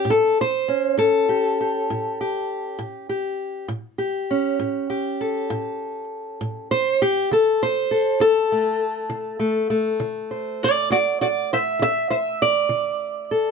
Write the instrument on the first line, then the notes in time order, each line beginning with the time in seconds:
steel-string acoustic guitar
Already playing: C#4 G4
0.05 A2
0.10 A4
0.41 C5
0.68 C#4
0.98 A2 A4
1.29 G4
1.61 G4
1.90 A2
2.21 G4
2.79 A2
3.09 G4
3.68 A2
3.98 G4
4.31 C#4
4.59 A2
4.90 G4
5.21 A4
5.50 A2
6.41 A2
6.71 C5
7.02 G4
7.31 D3 A4
7.63 C5
7.91 A4
8.20 D3 A4
8.52 A3
9.10 D3
9.39 A3
9.70 A3
10.00 D3
10.31 C5
10.63 F#4 D5
10.90 D3 F#4 D5
11.21 F#4 D5
11.53 C5 E5
11.79 D3 E5
12.10 C5 E5
12.42 D5
12.69 D3
13.31 A4